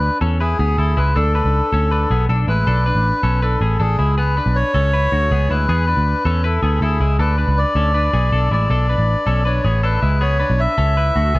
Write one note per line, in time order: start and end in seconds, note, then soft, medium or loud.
0.00 0.19 D4 medium
0.00 0.18 B4 medium
0.00 0.19 B4 medium
0.21 0.53 E2 medium
0.21 0.40 C#4 medium
0.21 0.40 A4 medium
0.40 0.59 E4 medium
0.40 0.99 G#4 medium
0.40 0.59 B4 medium
0.59 0.75 D2 medium
0.59 0.78 B3 medium
0.59 0.78 G#4 medium
0.78 0.94 D2 medium
0.78 0.96 E4 medium
0.78 0.97 A4 medium
0.97 1.13 C#2 medium
0.97 1.16 G#3 soft
0.97 1.15 E4 medium
0.97 1.16 B4 medium
1.16 1.40 D2 medium
1.16 1.35 D4 medium
1.16 1.35 A4 medium
1.16 2.25 A4 medium
1.35 1.71 D4 medium
1.35 1.70 B4 medium
1.44 1.60 C#2 medium
1.73 2.04 D2 medium
1.73 1.92 C#4 medium
1.73 1.91 A4 medium
1.91 2.10 D4 medium
1.91 2.10 B4 medium
2.10 2.26 B1 medium
2.10 2.29 B3 soft
2.10 2.29 G#4 medium
2.29 2.45 B1 medium
2.29 2.48 D4 medium
2.29 2.48 A4 medium
2.47 2.64 A1 medium
2.47 2.67 G#3 soft
2.47 2.67 E4 medium
2.47 3.45 B4 loud
2.67 2.91 B1 medium
2.67 2.86 D4 medium
2.67 2.86 A4 medium
2.86 3.22 D4 medium
2.86 3.21 B4 medium
2.95 3.11 A1 medium
3.23 3.55 B1 medium
3.23 3.42 C#4 medium
3.23 3.42 A4 medium
3.42 3.62 D4 medium
3.42 3.81 A4 medium
3.42 3.61 B4 medium
3.61 3.77 A1 medium
3.61 3.80 B3 medium
3.61 3.79 G#4 medium
3.80 3.96 A1 medium
3.80 3.99 D4 medium
3.80 4.15 G#4 medium
3.80 3.98 A4 medium
3.99 4.39 C#2 medium
3.99 4.18 G#3 soft
3.99 4.17 E4 medium
4.18 4.37 B3 medium
4.18 4.36 G#4 medium
4.18 4.57 B4 medium
4.37 4.73 D4 soft
4.37 4.72 B4 medium
4.46 4.62 B1 medium
4.56 5.53 C#5 loud
4.74 5.06 C#2 medium
4.74 4.94 C#4 medium
4.74 4.93 A4 medium
4.93 5.12 E4 medium
4.93 5.12 B4 medium
5.12 5.28 D2 medium
5.12 5.32 A3 medium
5.12 5.31 F#4 medium
5.31 5.47 C#2 medium
5.31 5.50 B3 medium
5.31 5.50 G#4 medium
5.50 5.66 D2 medium
5.50 5.69 G#3 soft
5.50 5.69 E4 medium
5.50 6.47 B4 loud
5.69 5.93 E2 loud
5.69 5.88 B3 medium
5.69 5.87 G#4 loud
5.88 6.23 D4 soft
5.88 6.23 B4 medium
5.97 6.13 D2 medium
6.25 6.57 E2 medium
6.25 6.45 C#4 medium
6.25 6.44 A4 medium
6.44 6.63 E4 medium
6.44 6.83 A4 medium
6.44 6.62 B4 medium
6.62 6.79 D2 medium
6.62 6.82 B3 medium
6.62 6.82 G#4 medium
6.81 6.97 D2 medium
6.81 6.99 E4 medium
6.81 7.17 G#4 medium
6.81 7.00 A4 medium
7.00 7.16 C#2 medium
7.00 7.20 G#3 soft
7.00 7.19 E4 medium
7.19 7.43 D2 medium
7.19 7.37 D4 medium
7.19 7.38 A4 medium
7.19 7.59 B4 medium
7.38 7.74 D4 medium
7.38 7.74 B4 medium
7.47 7.63 C#2 medium
7.58 8.51 D5 loud
7.75 8.08 D2 medium
7.75 7.95 C#4 medium
7.75 7.94 A4 medium
7.94 8.14 D4 medium
7.94 8.13 B4 medium
8.13 8.30 B1 medium
8.13 8.33 B3 medium
8.13 8.32 G#4 medium
8.32 8.48 B1 medium
8.32 8.52 D4 medium
8.32 8.51 A4 medium
8.51 8.67 A1 medium
8.51 8.71 G#3 soft
8.51 8.70 E4 medium
8.51 9.49 D5 loud
8.70 8.94 B1 loud
8.70 8.89 D4 medium
8.70 8.89 A4 medium
8.89 9.25 D4 soft
8.89 9.25 B4 medium
8.98 9.14 A1 medium
9.27 9.59 B1 medium
9.27 9.46 C#4 medium
9.27 9.45 A4 medium
9.45 9.65 D4 medium
9.45 9.64 B4 medium
9.45 9.85 C#5 medium
9.64 9.97 A1 medium
9.64 9.84 B3 medium
9.64 9.83 G#4 medium
9.83 10.03 D4 medium
9.83 10.02 A4 medium
9.83 10.22 B4 medium
10.02 10.43 C#2 medium
10.02 10.22 G#3 medium
10.02 10.21 E4 medium
10.21 10.40 B3 medium
10.21 10.39 G#4 medium
10.21 10.60 C#5 medium
10.40 10.76 D4 medium
10.40 10.75 B4 medium
10.50 10.66 B1 medium
10.60 11.39 E5 loud
10.78 11.10 C#2 medium
10.78 10.97 C#4 soft
10.78 10.97 A4 medium
10.97 11.15 E4 medium
10.97 11.16 B4 medium
11.16 11.32 D2 medium
11.16 11.35 A3 medium
11.16 11.34 F#4 medium
11.35 11.39 C#2 medium
11.35 11.39 B3 medium
11.35 11.39 G#4 medium